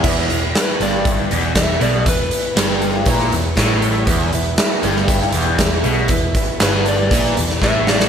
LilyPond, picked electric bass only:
\new Staff \with { instrumentName = "Picked electric bass" } { \clef bass \time 4/4 \key e \major \tempo 4 = 119 e,,8 e,,8 r8 g,,4 e,,8 e,,8 b,,8 | e,,8 r8 g,,4 ais,,8 e,,8 a,,4 | e,,8 e,,8 r8 g,,4 e,,8 e,,8 b,,8 | e,,8 r8 g,,4 ais,,8 e,,8 a,,4 | }